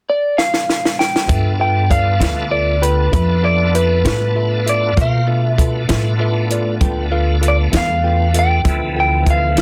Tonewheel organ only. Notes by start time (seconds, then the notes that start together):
1.29 B3 D4 F4 A4
4.97 A#3 F4 F#4 C5
5.27 A3 B3 D4 F4
8.65 E3 F3 A3 B3